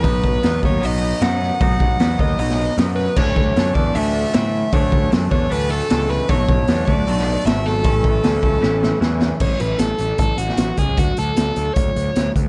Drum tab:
CC |----------------|----------------|x---------------|----------------|
HH |o---o---o---o---|o---o---o---o---|----o---o---o---|o---o---o---o---|
SD |----o-------o-o-|----o----o--o-o-|----o-------o---|----o-------o-o-|
BD |o-o---o---------|o-o---o---------|o-o---o---------|o-o---o---------|

CC |----------------|----------------|x---------------|----------------|
HH |o---o---o---o---|o---o-----------|--x-x-x-x-x-x-x-|x-x-x-x-x-x-x-x-|
SD |----o----o--o-o-|----o---o-o-o-o-|----o------oo---|----o-------o---|
BD |o-o---o---------|o-o---o---------|o-------o-----o-|o-------o-----o-|